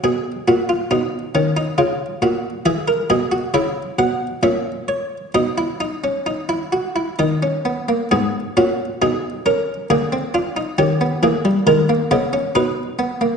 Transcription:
<<
  \new Staff \with { instrumentName = "Harpsichord" } { \time 3/4 \key gis \minor \tempo 4 = 68 << { r2. | e''8 dis''8 e''8 fis''8 e''8 cis''8 | dis''2 dis''4 | gis'8 fis'8 gis'8 ais'8 gis'8 eis'8 |
g'8 gis'8 ais'8 dis''8 b'4 | } \\ { gis'8 fis'16 eis'16 dis'8 cis'16 dis'16 eis'8 fis'8 | gis'16 ais'16 gis'16 fis'16 e'4 cis'4 | dis'16 e'16 dis'16 cis'16 dis'16 e'16 fis'16 e'16 dis'16 cis'16 b16 ais16 | b8 cis'8 dis'8 cis'8 ais16 bis16 d'16 dis'16 |
cis'16 b16 ais16 g16 gis16 ais16 b16 cis'16 dis'8 b16 ais16 | } >> }
  \new Staff \with { instrumentName = "Harpsichord" } { \clef bass \time 3/4 \key gis \minor b,8 ais,8 b,8 dis8 cis8 ais,8 | e8 b,8 cis8 b,8 ais,4 | b,2 dis4 | gis,8 ais,8 b,4 d4 |
dis8 e8 dis8 cis8 b,4 | }
>>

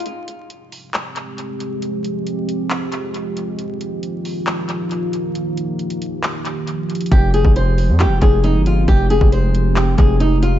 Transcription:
<<
  \new Staff \with { instrumentName = "Nylon-string guitar" } { \time 4/4 \key f \minor \tempo 4 = 136 r1 | r1 | r1 | r1 |
g'8 aes'8 c''4 g'8 aes'8 ees'8 f'8 | g'8 aes'8 c''4 g'8 aes'8 ees'8 f'8 | }
  \new Staff \with { instrumentName = "Ambient pad" } { \time 4/4 \key f \minor << { g'1~ | g'1 | f'1 | g'1~ |
g'1~ | g'1 | } \\ { <f aes c'>1~ | <f aes c'>1 | <ees bes>1~ | <ees bes>1 |
<aes c'>1~ | <aes c'>1 | } >> }
  \new Staff \with { instrumentName = "808-style bass" } { \clef bass \time 4/4 \key f \minor r1 | r1 | r1 | r1 |
f,,8. f,,4 f,16. f,,16. f,,8. g,,8. | f,,8. f,,4.~ f,,16 f,,4. | }
  \new DrumStaff \with { instrumentName = "Drums" } \drummode { \time 4/4 hh8 hh8 hh8 hho8 <hc hh>8 hh8 hh8 hh8 | hh8 hh8 hh8 hh8 <hc hh>8 hh8 hh8 hh8 | hh8 hh8 hh8 hho8 <hc hh>8 hh8 hh8 hh8 | hh8 hh8 hh16 hh16 hh8 <hc hh>8 hh8 hh8 hh32 hh32 hh32 hh32 |
<hh bd>8 hh16 bd16 hh8 hho8 <hc hh>8 <hh bd>8 hh8 hh8 | <hh bd>8 hh16 bd16 hh8 hh8 <hc hh>8 <hh bd>8 hh8 hh8 | }
>>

